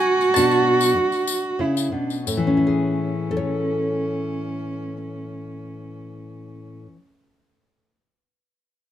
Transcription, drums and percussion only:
0.21 tambourine
0.36 tambourine
0.51 tambourine
0.81 tambourine
1.12 tambourine
1.27 tambourine
1.77 tambourine
2.10 tambourine
2.27 tambourine

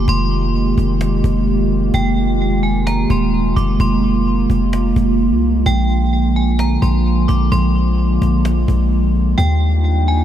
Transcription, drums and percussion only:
0.08 cajon bass
0.31 cajon slap
0.54 cajon slap
0.78 cajon bass
1.01 cajon slap
1.24 cajon bass
1.47 cajon slap
1.71 cajon slap
1.94 cajon bass
2.17 cajon slap
2.40 cajon slap
2.64 cajon slap
2.87 cajon slap
3.10 cajon bass
3.33 cajon slap
3.57 cajon bass
3.80 cajon bass
4.03 cajon slap
4.09 cajon slap
4.15 cajon slap
4.21 cajon slap
4.26 cajon slap
4.50 cajon bass
4.73 cajon slap
4.96 cajon bass
5.20 cajon slap
5.43 cajon slap
5.66 cajon bass
5.89 cajon slap
6.12 cajon slap
6.36 cajon slap
6.59 cajon slap
6.82 cajon bass
7.06 cajon slap
7.29 cajon bass
7.52 cajon bass
7.75 cajon slap
7.98 cajon slap
8.22 cajon bass
8.45 cajon slap
8.68 cajon bass
8.92 cajon slap
9.15 cajon slap
9.38 cajon bass
9.61 cajon slap
9.84 cajon slap
10.08 cajon slap

